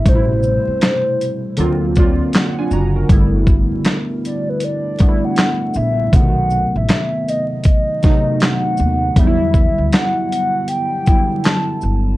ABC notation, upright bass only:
X:1
M:4/4
L:1/16
Q:"Swing 16ths" 1/4=79
K:Bm
V:1 name="Upright bass" clef=bass
A,,,3 G,,, z4 D,,4 z2 F,,,2 | G,,,3 F,,, z8 z2 _B,,,2 | B,,,3 A,,, z8 z2 ^D,,2 | E,,3 D,, z8 z2 G,,,2 |]